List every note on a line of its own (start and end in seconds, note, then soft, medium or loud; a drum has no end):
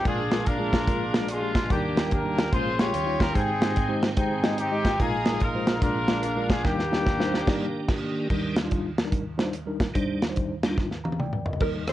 0.00 1.66 G#4 medium
0.04 1.66 A#1 medium
0.04 1.66 A#2 medium
0.04 1.69 F3 medium
0.04 0.20 G#3 medium
0.04 2.50 A#3 medium
0.04 0.20 D4 medium
0.04 2.50 D4 medium
0.04 0.46 D4 medium
0.04 0.20 F4 medium
0.04 0.46 F4 medium
0.04 0.44 G#4 loud
0.04 0.20 A#4 medium
0.04 kick loud
0.04 closed hi-hat medium
0.31 0.44 G#3 medium
0.31 0.44 D4 medium
0.31 0.44 F4 medium
0.31 0.45 A#4 medium
0.31 snare loud
0.31 closed hi-hat medium
0.46 1.25 D4 medium
0.46 1.25 F4 medium
0.46 1.29 A#4 loud
0.46 kick medium
0.46 closed hi-hat medium
0.59 0.78 G#3 medium
0.59 0.78 D4 medium
0.59 0.78 F4 medium
0.59 0.78 G#4 medium
0.73 kick medium
0.73 snare loud
0.73 closed hi-hat medium
0.87 1.03 G#3 medium
0.87 1.03 D4 medium
0.87 1.03 F4 medium
0.87 1.03 A#4 medium
0.87 kick loud
0.87 closed hi-hat medium
1.13 1.26 G#3 medium
1.13 1.27 D4 medium
1.13 1.27 F4 medium
1.13 1.27 A#4 loud
1.13 snare loud
1.13 closed hi-hat medium
1.29 1.69 G#3 medium
1.29 1.69 D4 medium
1.29 1.68 F4 medium
1.29 closed hi-hat medium
1.42 1.60 G#3 medium
1.42 1.61 D4 medium
1.42 1.61 F4 medium
1.42 1.61 G4 medium
1.55 kick loud
1.55 snare medium
1.55 closed hi-hat medium
1.70 2.49 D#2 medium
1.70 2.49 D#3 medium
1.70 2.53 D#3 medium
1.70 1.85 G3 medium
1.70 2.50 A#3 medium
1.70 1.85 D4 medium
1.70 2.12 D4 medium
1.70 1.86 D#4 medium
1.70 2.11 G4 loud
1.70 2.53 G4 medium
1.70 1.86 A#4 medium
1.70 kick loud
1.70 closed hi-hat medium
1.96 2.09 G3 medium
1.96 2.09 D4 medium
1.96 2.09 D#4 medium
1.96 2.09 A#4 medium
1.96 snare loud
1.96 closed hi-hat medium
2.11 2.51 D4 medium
2.11 2.51 G4 medium
2.11 2.53 A#4 medium
2.11 kick medium
2.11 closed hi-hat medium
2.24 2.43 G3 medium
2.24 2.43 D4 medium
2.24 2.43 D#4 medium
2.24 2.43 A#4 medium
2.39 snare loud
2.39 closed hi-hat medium
2.52 2.91 A#1 medium
2.52 2.91 A#2 medium
2.52 2.93 F3 medium
2.52 2.68 G#3 medium
2.52 2.94 A#3 medium
2.52 2.94 C#4 medium
2.52 2.68 C#4 medium
2.52 2.68 F4 medium
2.52 2.79 F4 medium
2.52 2.94 G#4 medium
2.52 2.92 G#4 medium
2.52 2.68 A#4 medium
2.52 2.77 C5 loud
2.52 kick loud
2.52 closed hi-hat medium
2.78 2.92 G#3 medium
2.78 2.92 C#4 medium
2.78 3.32 F4 medium
2.78 2.92 F4 medium
2.78 3.32 G4 medium
2.78 2.92 G4 medium
2.78 3.20 C#5 loud
2.78 snare loud
2.78 closed hi-hat medium
2.94 3.32 D#2 medium
2.94 3.32 D#3 medium
2.94 4.98 D#3 medium
2.94 3.35 G3 medium
2.94 3.35 C#4 medium
2.94 3.35 F4 medium
2.94 closed hi-hat loud
3.06 3.25 G3 medium
3.06 3.25 D#4 medium
3.06 3.26 F4 medium
3.06 3.26 C#5 medium
3.19 3.35 A#4 loud
3.19 kick loud
3.19 snare medium
3.19 closed hi-hat medium
3.34 4.96 G#2 medium
3.34 3.50 G#3 medium
3.34 4.99 G#3 medium
3.34 4.00 C4 medium
3.34 4.99 C4 medium
3.34 3.50 D#4 medium
3.34 4.00 D#4 medium
3.34 3.50 G4 medium
3.34 3.94 G#4 loud
3.34 3.50 C5 medium
3.34 4.99 G5 medium
3.34 kick loud
3.34 closed hi-hat medium
3.61 3.74 G#3 medium
3.61 3.74 D#4 medium
3.61 3.74 G4 medium
3.61 3.74 C5 medium
3.61 snare loud
3.61 closed hi-hat medium
3.76 kick medium
3.76 closed hi-hat medium
3.88 4.08 G#3 medium
3.88 4.08 D#4 medium
3.88 4.08 G4 medium
3.88 4.08 C5 loud
4.03 snare loud
4.03 closed hi-hat medium
4.17 4.32 G#3 medium
4.17 4.59 C4 medium
4.17 4.32 D#4 medium
4.17 4.59 D#4 medium
4.17 4.33 G4 medium
4.17 4.55 G#4 medium
4.17 4.33 C5 medium
4.17 kick loud
4.17 closed hi-hat medium
4.43 4.56 G#3 medium
4.43 4.56 D#4 medium
4.43 4.57 G4 medium
4.43 4.57 D#5 medium
4.43 snare loud
4.43 closed hi-hat medium
4.58 4.98 C4 medium
4.58 4.98 D#4 medium
4.58 5.00 G4 loud
4.58 closed hi-hat medium
4.71 4.90 G#3 medium
4.71 4.90 D#4 medium
4.71 4.90 G4 medium
4.71 4.91 D#5 medium
4.85 kick loud
4.85 snare medium
4.85 closed hi-hat medium
4.99 5.79 A#1 medium
4.99 5.79 A#2 medium
4.99 6.63 F3 medium
4.99 5.15 G#3 medium
4.99 5.81 A#3 medium
4.99 5.81 D#4 medium
4.99 5.15 D#4 medium
4.99 5.41 D#4 medium
4.99 5.15 F4 medium
4.99 5.41 F4 medium
4.99 5.41 G#4 loud
4.99 6.63 G#4 medium
4.99 5.16 A#4 medium
4.99 kick loud
4.99 closed hi-hat medium
5.26 5.39 G#3 medium
5.26 5.39 D#4 medium
5.26 5.39 F4 medium
5.26 5.39 A#4 medium
5.26 snare loud
5.26 closed hi-hat medium
5.40 5.80 D#4 medium
5.40 5.80 F4 medium
5.40 5.80 A#4 medium
5.40 kick medium
5.40 closed hi-hat medium
5.55 5.73 G#3 medium
5.55 5.73 D#4 medium
5.55 5.73 F4 medium
5.55 5.73 C5 medium
5.67 snare loud
5.67 closed hi-hat medium
5.82 6.61 A#1 medium
5.82 6.61 A#2 medium
5.82 5.97 G#3 medium
5.82 8.28 A#3 medium
5.82 8.27 D4 medium
5.82 5.98 D4 medium
5.82 6.61 D4 medium
5.82 5.98 F4 medium
5.82 6.61 F4 medium
5.82 6.46 A#4 loud
5.82 5.98 A#4 medium
5.82 kick loud
5.82 closed hi-hat medium
6.08 6.22 G#3 medium
6.08 6.22 D4 medium
6.08 6.22 F4 medium
6.08 6.22 A#4 medium
6.08 snare loud
6.08 closed hi-hat medium
6.23 closed hi-hat loud
6.36 6.55 G#3 medium
6.36 6.55 D4 medium
6.36 6.55 F4 medium
6.36 6.55 A#4 medium
6.49 6.65 G#4 medium
6.49 kick medium
6.49 snare loud
6.49 closed hi-hat medium
6.64 7.44 D#2 medium
6.64 8.28 D#3 medium
6.64 7.43 D#3 medium
6.64 6.80 G3 medium
6.64 7.85 A#3 medium
6.64 6.80 D4 medium
6.64 7.85 D4 medium
6.64 6.80 D#4 medium
6.64 7.88 G4 medium
6.64 8.29 G4 medium
6.64 6.80 A#4 medium
6.64 kick loud
6.64 snare medium
6.79 snare soft
6.92 7.04 G3 medium
6.92 7.04 D4 medium
6.92 7.04 D#4 medium
6.92 7.04 G4 medium
6.92 snare medium
7.06 kick medium
7.06 snare medium
7.19 7.38 G3 medium
7.19 7.38 D4 medium
7.19 7.38 D#4 medium
7.19 7.38 C5 loud
7.19 snare medium
7.34 snare medium
7.47 7.65 G3 loud
7.47 7.65 D4 loud
7.47 7.65 D#4 loud
7.47 kick loud
7.47 snare loud
7.47 crash medium
7.88 kick loud
7.88 snare loud
7.88 crash medium
8.30 9.92 D#2 medium
8.30 8.61 D#3 soft
8.30 9.92 D#3 medium
8.30 8.53 G3 medium
8.30 8.61 G3 soft
8.30 8.53 D4 medium
8.30 8.61 D4 medium
8.30 8.53 D#4 medium
8.30 8.53 A#4 medium
8.30 kick medium
8.30 crash medium
8.56 snare loud
8.56 closed hi-hat medium
8.64 8.88 G3 medium
8.64 8.88 D4 medium
8.64 8.88 D#4 medium
8.64 8.89 F4 loud
8.71 kick medium
8.71 closed hi-hat medium
8.98 snare loud
8.98 closed hi-hat medium
9.04 9.22 G3 medium
9.04 9.22 D4 medium
9.04 9.22 D#4 medium
9.04 9.22 A#4 medium
9.12 kick loud
9.12 closed hi-hat medium
9.38 9.51 G3 medium
9.38 9.51 D4 medium
9.38 9.52 D#4 medium
9.38 9.52 C5 medium
9.38 snare loud
9.38 closed hi-hat medium
9.53 closed hi-hat medium
9.66 9.85 G3 medium
9.66 9.86 D4 medium
9.66 9.86 D#4 medium
9.66 9.86 A#4 medium
9.80 kick medium
9.80 snare medium
9.80 closed hi-hat medium
9.94 11.57 D#2 medium
9.94 10.26 D#3 medium
9.94 11.57 D#3 medium
9.94 10.26 G3 soft
9.94 10.18 G3 medium
9.94 10.26 D4 medium
9.94 10.18 D4 medium
9.94 10.18 D#4 medium
9.94 10.18 C5 medium
9.94 kick loud
9.94 closed hi-hat medium
10.22 snare loud
10.22 closed hi-hat medium
10.29 10.54 G3 medium
10.29 10.54 D4 medium
10.29 10.54 D#4 medium
10.29 10.54 C5 medium
10.36 kick medium
10.36 closed hi-hat medium
10.63 10.77 D#3 soft
10.63 10.77 G3 soft
10.63 10.77 D4 soft
10.63 snare loud
10.63 closed hi-hat medium
10.70 10.88 G3 medium
10.70 10.88 D4 medium
10.70 10.88 D#4 medium
10.70 10.88 F4 medium
10.78 kick loud
10.78 snare soft
10.91 snare soft
11.04 11.19 F5 medium
11.04 11.19 A#5 medium
11.04 high tom medium
11.12 high tom medium
11.20 11.45 D5 medium
11.20 11.45 G5 medium
11.20 mid tom medium
11.33 mid tom medium
11.46 11.60 A#4 soft
11.46 11.86 D#5 medium
11.46 floor tom medium
11.53 floor tom medium
11.60 11.93 D#2 medium
11.60 11.93 D#3 medium
11.60 11.83 G3 medium
11.60 11.84 A#3 medium
11.60 11.84 D#4 medium
11.60 11.84 A#4 medium
11.60 11.69 A#4 medium
11.60 kick loud
11.60 crash medium
11.87 11.93 C5 medium
11.87 cross-stick loud
11.87 closed hi-hat medium